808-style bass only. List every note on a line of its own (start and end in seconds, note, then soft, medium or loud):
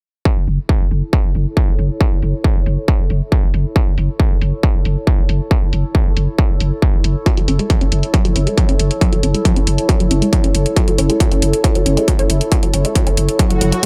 0.37 0.47 F#1 medium
0.47 0.58 F#1 loud
0.80 0.90 F#1 medium
0.91 1.02 F#1 loud
1.24 1.34 F#1 medium
1.35 1.46 F#1 loud
1.68 1.78 F#1 medium
1.79 1.90 F#1 loud
2.12 2.22 F#1 medium
2.23 2.34 F#1 medium
2.56 2.66 F#1 medium
2.66 2.77 F#1 medium
2.99 3.09 F#1 medium
3.10 3.21 F#1 loud
3.43 3.53 F#1 medium
3.54 3.65 F#1 loud
3.87 3.97 F#1 medium
3.98 4.09 F#1 loud
4.31 4.41 F#1 medium
4.41 4.52 F#1 medium
4.75 4.85 F#1 medium
4.85 4.96 F#1 loud
5.18 5.28 F#1 medium
5.29 5.40 F#1 loud
5.62 5.72 F#1 medium
5.73 5.84 F#1 loud
6.06 6.16 F#1 medium
6.17 6.28 F#1 medium
6.50 6.60 F#1 medium
6.60 6.71 F#1 loud
6.94 7.04 F#1 medium
7.04 7.15 F#1 loud
7.37 7.48 F#1 medium
7.48 7.59 F#1 medium
7.81 7.91 F#1 medium
7.92 8.03 F#1 medium
8.25 8.35 F#1 medium
8.36 8.47 F#1 loud
8.69 8.79 F#1 medium
8.79 8.90 F#1 loud
9.13 9.23 F#1 medium
9.23 9.34 F#1 loud
9.56 9.66 F#1 medium
9.67 9.78 F#1 medium
10.00 10.10 F#1 medium
10.11 10.22 F#1 loud
10.44 10.54 F#1 medium
10.55 10.66 F#1 loud
10.88 10.98 F#1 medium
10.98 11.09 F#1 loud
11.32 11.42 F#1 medium
11.42 11.53 F#1 medium
11.75 11.85 F#1 medium
11.86 11.97 F#1 loud
12.19 12.29 F#1 medium
12.30 12.41 F#1 loud
12.63 12.73 F#1 medium
12.74 12.85 F#1 loud
13.07 13.17 F#1 medium
13.17 13.28 F#1 medium
13.51 13.61 F#1 medium
13.61 13.72 F#1 loud